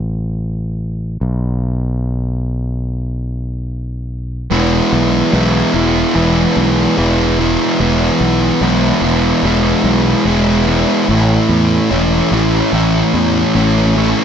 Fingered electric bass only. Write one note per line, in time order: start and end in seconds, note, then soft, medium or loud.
0.00 1.17 A1 medium
1.21 4.47 B1 medium
4.51 4.80 E1 medium
4.93 5.21 B1 medium
5.33 5.62 B1 loud
5.74 6.03 E1 medium
6.16 6.45 E1 medium
6.57 6.86 B1 medium
6.98 7.56 E1 medium
7.80 8.09 E1 medium
8.21 8.50 B1 loud
8.61 8.90 B1 loud
9.02 9.31 E1 medium
9.43 9.72 E1 loud
9.84 10.13 B1 loud
10.25 10.84 E1 medium
11.09 11.38 A1 loud
11.49 11.78 E2 medium
11.91 12.20 E1 loud
12.32 12.61 A1 medium
12.73 13.02 A1 loud
13.14 13.43 E2 loud
13.55 14.13 A1 medium